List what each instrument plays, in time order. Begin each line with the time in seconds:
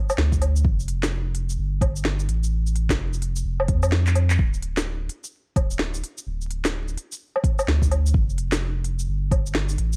0.10 low woodblock, shaker
0.18 sub bass D2, snare
0.32 kick, shaker
0.42 open hi-hat, low woodblock
0.56 shaker
0.65 sub bass F1, kick
0.80 shaker
0.88 open hi-hat
1.03 snare, shaker
1.35 open hi-hat
1.50 shaker
1.58 sub bass G1
1.81 kick, open hi-hat, low woodblock
1.96 shaker
2.05 snare
2.19 shaker
2.28 sub bass A1, open hi-hat
2.44 shaker
2.67 shaker
2.76 open hi-hat
2.89 sub bass F1, kick, snare, shaker
3.14 shaker
3.22 open hi-hat
3.36 shaker
3.45 sub bass F1
3.60 low woodblock
3.68 sub bass F2, kick, open hi-hat
3.83 low woodblock, shaker
3.92 snare
4.07 clap, shaker
4.15 open hi-hat, low woodblock
4.30 clap, shaker
4.39 sub bass D1, kick
4.54 shaker
4.62 open hi-hat
4.77 snare, shaker
5.09 open hi-hat
5.24 shaker
5.56 sub bass D1, kick, open hi-hat, low woodblock
5.71 shaker
5.79 snare
5.94 shaker
6.04 open hi-hat
6.18 shaker
6.27 sub bass D1
6.41 shaker
6.51 open hi-hat
6.65 snare, shaker
6.88 shaker
6.98 open hi-hat
7.12 shaker
7.36 low woodblock
7.44 kick, open hi-hat
7.59 low woodblock, shaker
7.68 sub bass D2, snare
7.82 kick, shaker
7.91 open hi-hat, low woodblock
8.06 shaker
8.14 sub bass F1, kick
8.30 shaker
8.38 open hi-hat
8.52 snare, shaker
8.84 open hi-hat
8.99 shaker
9.08 sub bass G1
9.31 kick, open hi-hat, low woodblock
9.46 shaker
9.55 snare
9.69 shaker
9.78 sub bass A1, open hi-hat
9.93 shaker